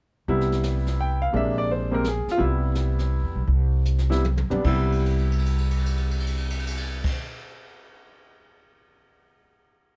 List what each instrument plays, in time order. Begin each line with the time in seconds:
0.28 upright bass C2, grand piano C3 G3 B3 E4, brush sweep, kick
0.41 snare
0.52 snare
0.63 snare, hi-hat pedal
0.87 snare
1.00 grand piano G5
1.22 grand piano F5
1.33 upright bass A#1, grand piano C3 G#3 A#3 D4 E5, brush sweep, kick
1.58 grand piano D5
1.71 grand piano C5
1.91 grand piano C3 G#3 A#3 C4 A#4
2.04 grand piano G#4, snare, hi-hat pedal
2.27 muted upright bass stroke, snare
2.31 grand piano F4
2.38 upright bass C2, grand piano C3 G3 B3 E4, brush sweep, kick
2.44 grand piano E4
2.75 snare, hi-hat pedal
2.99 snare
3.23 upright bass E2
3.35 upright bass B1
3.47 upright bass C2, brush sweep, kick
3.85 hi-hat pedal
3.98 snare
4.10 grand piano C3 G3 B3 E4, snare
4.25 high tom
4.37 high tom
4.49 upright bass B1, grand piano C3 G3 B3 D4, floor tom
4.64 upright bass C2, grand piano C3 G3 B3 E4, kick, crash
4.92 crash
4.99 ride
5.06 crash
5.19 ride
5.32 crash
5.39 ride
5.46 crash
5.58 ride
5.71 crash
5.79 ride
5.86 crash
5.97 ride
6.11 crash
6.20 ride
6.27 crash
6.37 ride
6.50 crash
6.59 ride
6.67 crash
6.77 ride
7.04 kick, crash